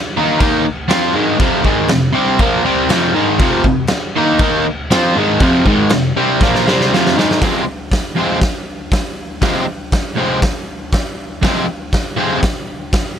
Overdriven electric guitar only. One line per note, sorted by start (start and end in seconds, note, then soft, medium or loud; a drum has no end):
0.17 0.39 D#3 medium
0.17 0.39 A#3 medium
0.17 0.40 D#4 loud
0.40 0.65 D#3 medium
0.40 0.65 A#3 medium
0.40 0.66 D#4 loud
0.65 muted overdriven electric guitar stroke medium
0.88 1.14 F3 medium
0.88 1.14 C4 medium
0.88 1.15 F4 loud
1.13 1.38 G#2 medium
1.13 1.40 D#3 medium
1.13 1.40 G#3 loud
1.38 1.64 F2 loud
1.38 1.64 C3 loud
1.38 1.65 F3 loud
1.64 1.88 G#2 medium
1.64 1.89 D#3 medium
1.64 1.90 G#3 medium
1.89 2.10 F2 medium
1.89 2.10 C3 medium
2.13 2.38 C3 medium
2.13 2.39 G3 loud
2.13 2.40 C4 loud
2.40 2.64 A#2 medium
2.40 2.64 F3 loud
2.40 2.65 A#3 loud
2.64 2.89 C3 medium
2.64 2.90 G3 medium
2.64 2.90 C4 loud
2.88 3.13 F2 medium
2.88 3.14 C3 loud
2.88 3.15 F3 loud
3.14 3.39 G#2 medium
3.14 3.39 D#3 medium
3.14 3.40 G#3 loud
3.40 3.63 F2 loud
3.40 3.64 C3 loud
3.40 3.65 F3 loud
3.65 3.85 F2 medium
3.65 3.85 C3 medium
3.92 muted overdriven electric guitar stroke medium
4.16 4.40 D#3 loud
4.16 4.41 A#3 medium
4.16 4.41 D#4 loud
4.41 4.65 D#3 loud
4.41 4.65 A#3 loud
4.41 4.66 D#4 loud
4.66 muted overdriven electric guitar stroke medium
4.91 5.15 F3 medium
4.91 5.15 C4 medium
4.91 5.16 F4 loud
5.15 5.39 G#2 medium
5.15 5.40 D#3 loud
5.15 5.41 G#3 loud
5.40 5.65 F2 loud
5.40 5.66 C3 loud
5.40 5.66 F3 loud
5.66 5.90 G#2 medium
5.66 5.91 D#3 loud
5.66 5.91 G#3 medium
5.91 6.11 F2 medium
5.91 6.12 C3 medium
6.16 6.40 C3 loud
6.16 6.40 G3 loud
6.16 6.41 C4 loud
6.42 6.66 A#2 loud
6.42 6.66 F3 loud
6.42 6.67 A#3 loud
6.67 6.91 C3 medium
6.67 6.92 G3 medium
6.67 6.92 C4 medium
6.91 7.16 F2 medium
6.91 7.17 C3 medium
6.91 7.17 F3 loud
7.17 7.40 G#2 medium
7.17 7.42 D#3 loud
7.17 7.42 G#3 loud
7.41 7.61 F2 medium
7.41 7.62 C3 medium
7.41 7.62 F3 loud
7.41 7.63 G#3 loud
7.45 7.64 C4 loud
8.16 8.37 F2 medium
8.16 8.37 C3 medium
8.16 8.38 F3 loud
8.16 8.38 G#3 medium
8.16 8.38 C4 loud
9.42 9.63 F2 medium
9.42 9.63 C3 loud
9.42 9.63 F3 medium
9.42 9.64 G#3 medium
9.42 9.64 C4 medium
10.16 10.38 F2 medium
10.16 10.38 C3 medium
10.16 10.39 F3 medium
10.16 10.39 G#3 medium
10.16 10.40 C4 medium
11.42 11.64 F2 loud
11.42 11.64 C3 medium
11.42 11.65 F3 loud
11.42 11.65 G#3 loud
11.42 11.65 C4 loud
12.17 12.38 F2 loud
12.17 12.38 C3 medium
12.17 12.39 F3 loud
12.17 12.39 G#3 loud
12.17 12.40 C4 medium